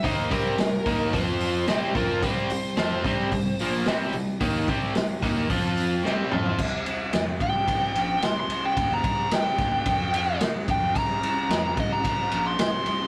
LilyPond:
<<
  \new Staff \with { instrumentName = "Lead electric guitar" } { \time 4/4 \key bes \lydian \tempo 4 = 110 c''8 bes'4. c''4 c''8 bes'8 | c''2. r4 | r1 | r4. g''4. c'''16 c'''8 g''16~ |
g''16 bes''8. g''2 r8 g''8 | bes''4. ees''16 bes''4 c'''16 c'''8 c'''8 | }
  \new Staff \with { instrumentName = "Overdriven electric guitar" } { \clef bass \time 4/4 \key bes \lydian <ees bes ees'>8 <c g c'>8 <c g>8 <ees bes ees'>8 <f c' f'>4 <c g c'>8 <f c' f'>8 | <c g c'>8 <c g>8 <f c' f'>8 <c g c'>8 <c g>8 <bes, f bes>8 <c g c'>8 <c g>8 | <ees bes ees'>8 <c g c'>8 <c g>8 <ees bes ees'>8 <f c' f'>4 <c g c'>8 <f c' f'>8 | r1 |
r1 | r1 | }
  \new Staff \with { instrumentName = "Fingered electric bass" } { \clef bass \time 4/4 \key bes \lydian ees,8 c,8 c,8 ees,8 f,4 c,8 f,8 | c,8 c,8 f,8 c,8 c,8 bes,,8 c,8 c,8 | ees,8 c,8 c,8 ees,8 f,4 c,8 f,8 | c,8 c,8 f,8 c,8 c,8 bes,,8 c,8 c,8 |
ees,8 c,8 c,8 ees,8 f,4 c,8 f,8 | c,8 c,8 f,8 c,8 c,8 bes,,8 c,8 c,8 | }
  \new DrumStaff \with { instrumentName = "Drums" } \drummode { \time 4/4 <hho bd>8 <hho bd>8 <hho sn>8 <hho bd sn>8 <hho bd>8 hho8 <hho sn>8 <hho bd>8 | <hho bd>8 hho8 <hho sn>8 <hho bd>8 <hho bd>8 hho8 <hho sn>8 hho8 | <hho bd>8 <hho bd>8 <hho sn>8 <hho bd sn>8 <hho bd>8 hho8 sn8 toml16 tomfh16 | <cymc bd>8 cymr8 <cymr sn>8 <bd cymr>8 <bd cymr>8 cymr8 <cymr sn>8 cymr8 |
<bd cymr>8 <bd cymr>8 <cymr sn>8 <bd cymr sn>8 <bd cymr>8 cymr8 <cymr sn>8 <bd cymr>8 | <bd cymr>8 cymr8 <cymr sn>8 <bd cymr>8 <bd cymr>8 cymr8 <cymr sn>8 cymr8 | }
>>